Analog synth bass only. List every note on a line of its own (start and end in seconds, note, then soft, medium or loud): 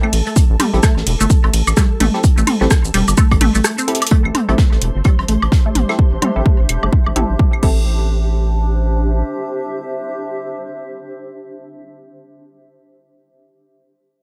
0.13 0.22 A1 medium
0.50 0.56 A1 loud
0.74 0.80 A1 loud
0.97 1.03 A1 medium
1.07 1.15 E1 loud
1.21 1.27 G1 loud
1.44 1.50 A1 medium
1.53 1.62 A1 medium
1.67 1.73 A1 medium
2.00 2.09 A1 medium
2.38 2.44 A1 loud
2.61 2.67 A1 loud
2.85 2.91 A1 medium
2.94 3.03 E1 loud
3.08 3.14 G1 loud
3.32 3.38 A1 medium
3.41 3.50 A1 medium
3.55 3.61 A1 medium
4.25 4.31 A1 loud
4.49 4.55 A1 loud
4.72 4.78 A1 medium
4.82 4.91 E1 loud
4.96 5.02 G1 loud
5.19 5.25 A1 medium
5.29 5.37 A1 medium
5.43 5.49 A1 medium
5.75 5.84 A1 medium
6.13 6.19 A1 medium
6.36 6.42 A1 loud
6.60 6.66 A1 medium
6.69 6.78 E1 medium
6.83 6.89 G1 loud
7.07 7.13 A1 medium
7.16 7.25 A1 medium
7.30 7.36 A1 medium
7.63 9.23 A1 medium